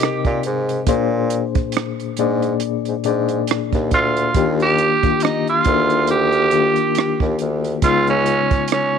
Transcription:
Already playing: C3 C4 D#4 G4 A#4 C5 D5 D#5
0.00 cross-stick, closed hi-hat
0.25 A#2, kick, closed hi-hat
0.43 G#2, closed hi-hat
0.69 closed hi-hat
0.87 A#2 A#3 C#4 G#4 C5, kick, closed hi-hat
0.94 D4
1.30 closed hi-hat
1.55 kick, closed hi-hat
1.72 closed hi-hat
1.77 cross-stick
2.00 closed hi-hat
2.17 G#2 A#2 A#3 D4 G#4 D5, closed hi-hat
2.42 closed hi-hat
2.60 closed hi-hat
2.85 G#2, closed hi-hat
3.04 G#2 A#2 A#3 D4 G#4 D5, closed hi-hat
3.29 closed hi-hat
3.47 cross-stick, closed hi-hat
3.73 D#2, kick, closed hi-hat
3.91 D2 F4, kick, closed hi-hat
4.17 closed hi-hat
4.34 D#2 D#3 A#3 D4 F4 G4, kick, closed hi-hat
4.60 G4, closed hi-hat
4.78 closed hi-hat
5.03 D#3 A#3 D4 F4 G4, kick, closed hi-hat
5.20 D#4, closed hi-hat
5.25 cross-stick
5.47 F4, closed hi-hat
5.64 D2 A#3 D4 D#4 F4 A#4, kick, closed hi-hat
5.90 closed hi-hat
6.07 G4, closed hi-hat
6.32 closed hi-hat
6.51 D#3 A#3 D4 F4 G4, closed hi-hat
6.76 closed hi-hat
6.95 cross-stick, closed hi-hat
7.20 D#2, kick
7.39 D2, closed hi-hat
7.64 closed hi-hat
7.82 C#2 C#3 G#3 B3 D#4 F4, kick, closed hi-hat
8.07 C#4, closed hi-hat
8.26 closed hi-hat
8.51 kick, closed hi-hat
8.68 closed hi-hat
8.72 C#4, cross-stick

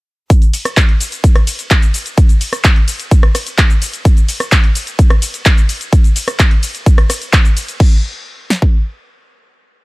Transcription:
0.30 kick, closed hi-hat, cabasa
0.42 closed hi-hat, cabasa
0.54 open hi-hat, ride, cabasa
0.65 cross-stick, closed hi-hat, cabasa
0.77 kick, clap, closed hi-hat, cabasa
0.89 closed hi-hat
1.01 open hi-hat, ride, cabasa
1.12 closed hi-hat, cabasa
1.24 kick, closed hi-hat, cabasa
1.36 cross-stick, closed hi-hat
1.47 open hi-hat, ride, cabasa
1.59 closed hi-hat, cabasa
1.71 kick, clap, closed hi-hat, cabasa
1.82 closed hi-hat, cabasa
1.94 open hi-hat, ride, cabasa
2.06 closed hi-hat, cabasa
2.17 kick, closed hi-hat, cabasa
2.29 closed hi-hat, cabasa
2.41 open hi-hat, ride, cabasa
2.53 cross-stick, closed hi-hat, cabasa
2.64 kick, clap, closed hi-hat, cabasa
2.76 closed hi-hat
2.88 open hi-hat, ride, cabasa
2.99 closed hi-hat, cabasa
3.11 kick, closed hi-hat, cabasa
3.23 cross-stick, closed hi-hat
3.35 cross-stick, open hi-hat, ride, cabasa
3.47 closed hi-hat, cabasa
3.58 kick, clap, closed hi-hat, cabasa
3.70 closed hi-hat, cabasa
3.82 open hi-hat, ride, cabasa
3.93 closed hi-hat, cabasa
4.05 kick, closed hi-hat, cabasa
4.17 closed hi-hat, cabasa
4.29 open hi-hat, ride, cabasa
4.40 cross-stick, closed hi-hat, cabasa
4.52 kick, clap, closed hi-hat, cabasa
4.64 closed hi-hat
4.75 open hi-hat, ride, cabasa
4.87 closed hi-hat, cabasa
4.99 kick, closed hi-hat, cabasa
5.10 cross-stick, closed hi-hat
5.22 open hi-hat, ride, cabasa
5.34 closed hi-hat, cabasa
5.46 kick, clap, closed hi-hat, cabasa
5.58 closed hi-hat, cabasa
5.69 open hi-hat, ride, cabasa
5.81 closed hi-hat, cabasa
5.93 kick, closed hi-hat, cabasa
6.04 closed hi-hat, cabasa
6.16 open hi-hat, ride, cabasa
6.28 cross-stick, closed hi-hat, cabasa
6.39 kick, clap, closed hi-hat, cabasa
6.51 closed hi-hat
6.63 open hi-hat, ride, cabasa
6.75 closed hi-hat, cabasa
6.86 kick, closed hi-hat, cabasa
6.98 cross-stick, closed hi-hat
7.10 cross-stick, open hi-hat, ride, cabasa
7.22 closed hi-hat, cabasa
7.33 kick, clap, closed hi-hat, cabasa
7.45 closed hi-hat, cabasa
7.57 open hi-hat, ride, cabasa
7.68 closed hi-hat, cabasa
7.80 kick, crash
8.50 snare
8.62 kick

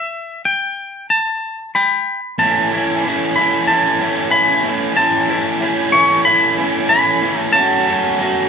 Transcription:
Already playing: E5
0.45 G5
1.10 A5
1.75 G5 B5
2.38 A2 E3 A3 C#4 E4 A5
2.71 A2 E3 A3 C#4 E4
3.03 A2 E3 A3 C#4 E4
3.36 A2 E3 A3 C#4 E4 B5
3.67 A2 E3 A3 C#4 E4 A5
4.00 A2 E3 A3 C#4 E4
4.31 A2 E3 A3 C#4 E4 B5
4.64 A2 E3 A3 C#4 E4
4.96 A2 E3 A3 C#4 E4 A5
5.29 A2 E3 A3 C#4 E4
5.61 A2 E3 A3 C#4 E4
5.92 A2 E3 A3 C#4 E4 C#6
6.25 A2 E3 A3 C#4 E4 B5
6.58 A2 E3 A3 C#4 E4
6.89 A2 E3 A3 C#4 E4 B5
7.22 A2 E3 A3 C#4 E4
7.40 A5
7.53 F#3 A3 C#4 F#4 A5
7.86 F#3 A3 C#4 F#4
8.19 F#3 A3 C#4 F#4

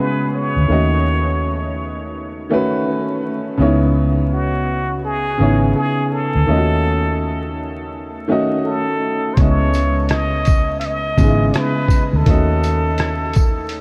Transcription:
Already playing: C#3 G#3 B3 E4 F#4
0.00 B4
0.34 C#5
0.56 D2
0.68 D#2 D#3 A3 C#4 F#4 D#5
2.49 D#3 A3 C#4 F#4
2.54 B4
3.57 C#2 C#3 B3 D#4 E4
3.62 C#5
4.33 F#4
5.04 G#4
5.38 G#1 C#3 B3 D#4 E4
5.42 C#5
5.75 G#4
6.12 A4
6.35 D2
6.46 D#2 D#3 A3 C#4 F4
6.51 D#5
6.56 F#4
8.28 D#3 A3 C#4 F#4
8.32 D#5
8.66 A4
9.34 C#2 C#3 C5, kick, closed hi-hat
9.38 G#3 B3 E4 C#5 D#5
9.74 closed hi-hat, tambourine
10.09 D#5, cross-stick, closed hi-hat
10.45 kick, closed hi-hat, tambourine
10.79 E5, closed hi-hat
10.85 D#5
11.17 G#1 C#3 G#3 B3 D#4, kick, closed hi-hat, tambourine
11.22 G#4
11.27 E4
11.54 cross-stick, closed hi-hat
11.58 B4
11.89 kick, closed hi-hat, tambourine
12.13 D2 A4
12.26 D#2 D#3 A3 C#4 F#4, kick, closed hi-hat
12.30 D#5
12.63 closed hi-hat, tambourine
12.98 cross-stick, closed hi-hat
13.33 kick, closed hi-hat, tambourine
13.69 closed hi-hat

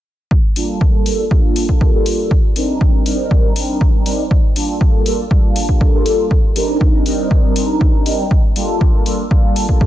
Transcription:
0.31 kick
0.56 G3 A#3 D4 F4 A4, open hi-hat
0.81 kick
1.06 G3 A#3 D4 F4 A4, open hi-hat
1.31 G3 A#3 D4 F4 A4, kick
1.56 open hi-hat
1.69 G3 A#3 D4 F4 A4, kick
1.81 kick
1.94 G3 A#3 D4 F4 A4
2.06 open hi-hat
2.31 kick
2.56 G3 C4 D4 D#4 A#4, open hi-hat
2.81 kick
3.06 G3 C4 D4 D#4 A#4, open hi-hat
3.31 kick
3.56 G3 C4 D4 D#4 A#4, open hi-hat
3.81 kick
4.06 G3 C4 D4 D#4 A#4, open hi-hat
4.31 kick
4.56 G3 A#3 D4 F4 A4, open hi-hat
4.81 kick
5.06 G3 A#3 D4 F4 A4, open hi-hat
5.31 G3 A#3 D4 F4 A4, kick
5.56 open hi-hat
5.68 G3 A#3 D4 A4, kick
5.81 kick
5.93 G3 A#3 D4 F4 A4
6.06 open hi-hat
6.31 kick
6.55 G3 C4 D4 D#4 A#4, open hi-hat
6.81 kick
7.06 G3 C4 D4 D#4 A#4, open hi-hat
7.31 kick
7.56 G3 C4 D4 D#4 A#4, open hi-hat
7.81 kick
8.06 G3 C4 D4 D#4 A#4, open hi-hat
8.31 kick
8.56 G3 A#3 D4 F4 A4, open hi-hat
8.81 kick
9.06 G3 A#3 D4 F4 A4, open hi-hat
9.31 G3 A#3 D4 F4 A4, kick
9.56 open hi-hat
9.68 G3 A#3 D4 F4 A4, kick
9.81 kick

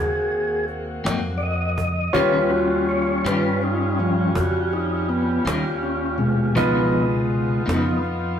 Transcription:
Already playing: D#2 A#3 C4 F#4 G#4 A#4 D#5
0.31 cajon slap
0.68 cajon slap
1.04 F2 G#2 F#3 A#3 C4, cajon slap
1.38 D5, cajon slap
1.43 D#5
1.78 cajon bass
2.13 D#2 D#3 G3 C#4 F4 G4 B4 C#5, cajon bass
2.17 F4
2.50 F#4, cajon slap
2.88 C#5, cajon slap
2.90 cajon slap
3.24 G2 D#3 G3 C#4 F4 B4, cajon slap
3.61 D#4, cajon slap
3.98 F3 G3 C#4, cajon slap
4.35 F2 F#4 G4, cajon bass
4.72 D#4, cajon slap
5.09 B3, cajon slap
5.45 D#2 D#3 G3 C#4 F4, cajon slap
5.83 C#4, cajon slap
6.18 B2 G#3, cajon slap
6.55 C#2 C#3 F3 B3 D#4 F4 B4 D#5, cajon bass
6.93 cajon slap
7.30 cajon slap
7.66 F2 C#3 F3 B3 D#4, cajon slap
8.04 cajon slap

